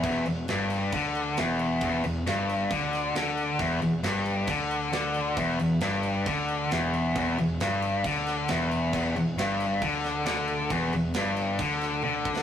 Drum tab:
CC |x-x-x-x-x-x-x-x-|x-x-x-x-x-x-x-x-|x-x-x-x-x-x-x-x-|x-x-x-x-x-x-x-x-|
SD |----o-------o---|----o-----o-o---|----o-------o---|----o-------o---|
T1 |----------------|----------------|----------------|----------------|
BD |o-------o-------|o-------o-------|o-------o-------|o-------o-------|

CC |x-x-x-x-x-x-x-x-|x-x-x-x-x-x-x-x-|x-x-x-x-x-x-----|
SD |----o-----o-o---|----o-----o-o---|----o-----o----o|
T1 |----------------|----------------|------------o---|
BD |o-------o-------|o-------o-------|o-------o-----o-|